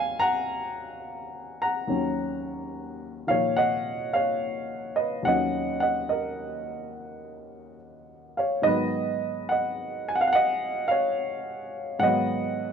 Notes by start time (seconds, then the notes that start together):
Already playing: D#2 D#3 F#3 C#4 D#5 F5 F#5 G#5
0.20 F#5 A#5
1.62 F#5 A#5
1.87 D#2 D#3 F#3 C#4
3.27 A#2 D#3 F3 C#5 F5
3.57 D#5 F#5
4.13 C#5 F5
4.96 B4 D#5
5.23 D#2 D#3 F#3 F#5
5.28 C#4 D#5
5.80 D#5 F#5
6.09 A#4 D#5
8.37 C#5 F5
8.62 G#2 D#3 F#3 D#5
8.67 B3 B4
9.49 D#5 F#5
10.08 G#5
10.15 F#5
10.21 F5
10.27 F#5
10.33 D#5 F#5
10.88 C#5 F5
11.99 G#2 D#3 F#3 F#5
12.03 B3 D#5